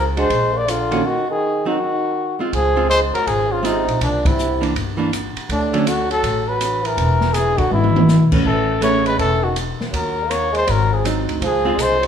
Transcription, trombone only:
0.18 0.56 G#3 medium
0.55 0.68 A#3 medium
0.67 1.07 D3 medium
1.05 1.28 D#3 medium
1.28 1.67 D#3 medium
1.67 2.40 D#3 medium
2.53 2.87 F3 medium
2.90 3.00 G#3 medium
3.14 3.29 F#3 medium
3.27 3.52 F3 medium
3.50 3.65 C#3 medium
3.63 4.00 C3 medium
4.02 4.27 A#2 medium
4.26 4.62 C3 medium
5.49 5.89 A2 medium
5.88 6.09 D3 medium
6.10 6.47 F#3 medium
6.47 6.86 F#3 medium
6.85 7.35 E3 medium
7.35 7.59 E3 medium
7.58 7.69 D3 medium
7.70 8.27 B2 medium
8.44 8.79 E3 medium
8.81 9.04 A3 medium
9.05 9.17 G#3 medium
9.18 9.43 E3 medium
9.41 9.55 D#3 medium
9.91 10.28 F#3 medium
10.27 10.52 A#3 medium
10.53 10.69 G#3 medium
10.68 10.94 F#3 medium
10.92 11.05 F3 medium
11.42 11.79 F3 medium
11.78 11.99 G#3 medium
12.00 12.07 F#3 medium

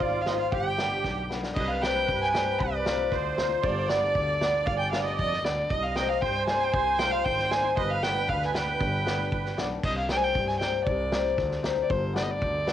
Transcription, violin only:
0.02 0.23 D5 medium
0.22 0.29 F5 medium
0.27 0.39 D#5 medium
0.39 0.51 F5 medium
0.54 1.27 G5 loud
1.55 1.70 D#5 medium
1.68 1.84 F5 medium
1.83 2.21 G5 loud
2.21 2.27 G5 medium
2.21 2.26 G#5 medium
2.26 2.34 G#5 loud
2.33 2.60 G5 medium
2.59 3.37 D5 medium
3.63 3.91 C5 medium
3.89 4.68 D5 loud
4.66 4.76 F5 medium
4.77 4.91 G5 medium
4.77 4.81 G#5 medium
4.92 5.04 F5 medium
5.04 5.17 D#5 medium
5.18 5.46 D#5 loud
5.44 5.71 D5 medium
5.70 5.85 D#5 medium
5.83 5.97 F5 medium
5.96 6.10 G5 medium
6.09 6.23 F5 medium
6.21 6.46 G5 loud
6.47 6.61 G#5 medium
6.60 6.74 G5 medium
6.73 7.01 G#5 loud
6.99 7.13 G5 loud
7.11 7.26 F5 medium
7.24 7.53 G5 loud
7.51 7.77 G#5 medium
7.78 7.92 D#5 medium
7.90 8.04 F5 medium
8.03 8.31 G5 medium
8.29 8.47 F5 medium
8.46 8.56 G#5 medium
8.55 9.58 G5 medium
9.85 9.96 D#5 medium
9.98 10.09 F5 medium
10.11 10.18 G5 loud
10.17 10.25 G#5 medium
10.23 10.50 G5 medium
10.48 10.59 G#5 medium
10.60 10.84 G5 medium
10.85 11.59 D5 medium
11.82 11.92 D5 medium
11.90 12.16 C5 medium
12.16 12.25 D5 medium
12.23 12.32 D#5 medium
12.31 12.73 D5 medium

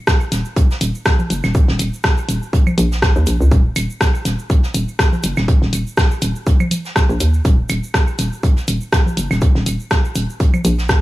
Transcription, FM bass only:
0.32 0.43 D#1 medium
0.81 0.92 D#1 medium
1.30 1.41 F#1 medium
1.44 1.53 D#1 medium
1.68 1.77 D#1 loud
1.79 1.90 D#1 medium
2.29 2.40 D#1 medium
2.78 3.12 A#1 loud
3.16 3.25 D#2 loud
3.27 3.38 A#1 medium
3.41 3.49 C#2 medium
3.52 3.72 D#1 loud
3.76 3.87 D#1 medium
4.25 4.36 D#1 medium
4.74 4.85 D#1 medium
5.24 5.35 F#1 medium
5.37 5.46 D#1 medium
5.62 5.71 D#1 loud
5.73 5.84 D#1 medium
6.22 6.33 D#1 medium
7.09 7.18 A#1 loud
7.20 7.41 D#2 medium
7.45 7.65 D#1 loud
7.70 7.81 D#1 medium
8.19 8.30 D#1 medium
8.68 8.79 D#1 medium
9.17 9.28 F#1 medium
9.31 9.40 D#1 medium
9.55 9.64 D#1 loud
9.66 9.77 D#1 medium
10.15 10.26 D#1 medium
10.65 10.99 A#1 loud

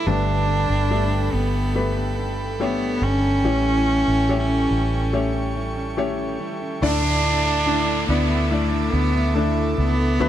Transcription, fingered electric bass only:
0.06 0.66 G1 medium
0.70 1.29 G1 medium
1.33 2.98 G1 medium
3.02 3.41 G1 medium
3.44 4.04 A1 loud
4.08 4.67 A1 medium
4.71 6.36 A1 medium
6.82 8.05 D2 loud
8.09 8.89 D2 medium
8.93 9.74 D2 loud
9.78 10.17 C#2 medium
10.20 10.29 D2 loud

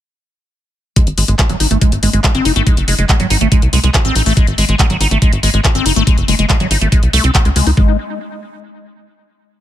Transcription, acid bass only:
0.96 1.06 G#3 medium
1.18 1.25 G#3 medium
1.28 1.35 G#3 medium
1.39 1.46 G#3 medium
1.50 1.57 F#3 medium
1.60 1.67 D#4 medium
1.71 1.78 A3 medium
1.81 1.92 G#3 medium
2.03 2.10 G#3 medium
2.13 2.20 G#3 medium
2.24 2.31 G#3 medium
2.35 2.45 C4 loud
2.45 2.52 D#4 medium
2.56 2.63 A3 loud
2.67 2.77 G#3 medium
2.88 2.95 G#3 medium
2.99 3.06 G#3 medium
3.09 3.16 G#3 medium
3.20 3.27 F#3 medium
3.30 3.37 D#4 medium
3.41 3.48 A3 medium
3.52 3.62 G#3 medium
3.73 3.80 G#3 medium
3.84 3.91 G#3 medium
3.94 4.01 G#3 medium
4.05 4.15 C4 loud
4.16 4.23 D#4 medium
4.26 4.33 A3 loud
4.37 4.47 G#3 medium
4.58 4.65 G#3 medium
4.69 4.76 G#3 medium
4.90 4.97 F#3 medium
5.01 5.08 D#4 medium
5.11 5.18 A3 medium
5.22 5.32 G#3 medium
5.43 5.50 G#3 medium
5.54 5.61 G#3 medium
5.64 5.71 G#3 medium
5.75 5.85 C4 loud
5.86 5.93 D#4 medium
5.96 6.03 A3 loud
6.07 6.17 G#3 medium
6.28 6.35 G#3 medium
6.39 6.46 G#3 medium
6.50 6.57 G#3 medium
6.60 6.67 F#3 medium
6.71 6.78 D#4 medium
6.81 6.88 A3 medium
6.92 7.02 G#3 medium
7.13 7.23 A3 loud
7.24 7.31 C4 medium
7.35 7.42 A3 medium
7.45 7.50 G#3 medium
7.56 7.66 G#3 medium
7.67 7.71 D#4 medium
7.77 7.97 G#3 medium

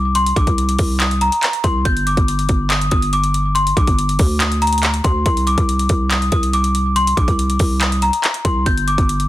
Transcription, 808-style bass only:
0.00 0.33 C2 loud
0.36 0.47 A#1 loud
0.47 0.78 C2 loud
0.79 1.30 C2 loud
1.64 1.85 C2 loud
1.85 2.16 G1 loud
2.17 2.48 G1 loud
2.49 2.90 G1 loud
2.92 3.73 G1 loud
3.77 3.87 A#1 loud
3.87 4.18 G1 loud
4.19 5.01 D2 loud
5.04 5.25 D2 loud
5.26 5.56 C2 loud
5.58 5.88 C2 loud
5.90 6.30 C2 loud
6.32 7.14 C2 loud
7.17 7.27 A#1 loud
7.28 7.59 C2 loud
7.60 8.11 C2 loud
8.45 8.65 C2 loud
8.66 8.97 G1 loud
8.98 9.28 G1 loud

